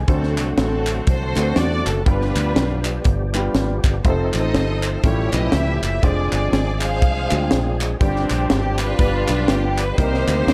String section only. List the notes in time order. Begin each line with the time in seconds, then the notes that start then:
0.08 C4 F#4 A4
0.40 A4
0.59 C4 F#4 A4
1.07 F#4 A4 C5
1.57 D5
1.88 A4
2.07 D4 F4 B4
4.03 D#4 A4 C5
4.33 A4 C5 D#5
4.86 C5
5.05 E4 G4 C#5
5.34 D#5
5.53 E5
5.83 E5
6.03 G#4 D5
6.33 D5
6.53 D5
6.81 G#4 C5 F5
7.98 C4 D4 G4
8.30 G4
8.51 G4
8.79 D4 F4 B4
9.29 B4
9.48 G4
9.77 B4
9.96 D#4 G4 C5